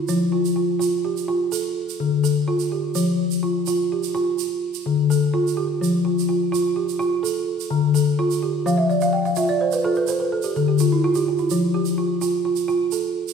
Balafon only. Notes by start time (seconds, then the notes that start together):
Already playing: E4
0.09 F3
0.32 F4
0.56 F4
0.79 F4
1.05 G4
1.28 F4
1.52 A4
2.00 D3
2.24 A4
2.48 F4
2.72 G4
2.95 F3
3.43 F4
3.68 F4
3.92 G4
4.15 F4
4.86 D3
5.10 A4
5.34 F4
5.57 G4
5.81 F3
6.05 F4
6.29 F4
6.52 F4
6.76 G4
6.99 F4
7.23 A4
7.71 D3
7.94 A4
8.19 F4
8.43 G4
8.66 F3 F5
8.77 E5
8.90 D5
9.02 F5
9.13 G5
9.25 F5
9.37 F4 E5
9.49 D5
9.61 C5
9.73 B4
9.84 F4 A4
9.97 B4
10.09 C5
10.20 B4
10.32 A4
10.44 G4
10.56 D3 A4
10.68 G4
10.80 F4
10.92 E4
11.04 F4
11.15 G4
11.28 F4
11.39 E4
11.51 F3
11.74 G4
11.98 F4
12.21 F4
12.45 F4
12.68 F4
12.92 A4